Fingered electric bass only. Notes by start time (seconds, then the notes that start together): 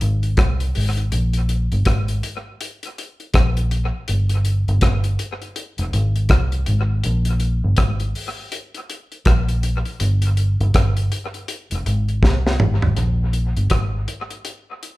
0.02 G#1
0.38 C2
0.76 G#1
1.13 A#1
1.72 G1
1.87 G#1
3.35 A#1
4.09 G1
4.68 G1
4.83 G1
5.79 F1
5.93 G#1
6.30 C2
6.68 G#1
7.05 A#1
7.64 G1
7.78 G#1
9.27 A#1
10.01 G1
10.61 G1
10.75 G1
11.72 F1
11.86 G#1
12.23 C2
12.60 G#1
12.97 A#1
13.57 G1
13.72 G#1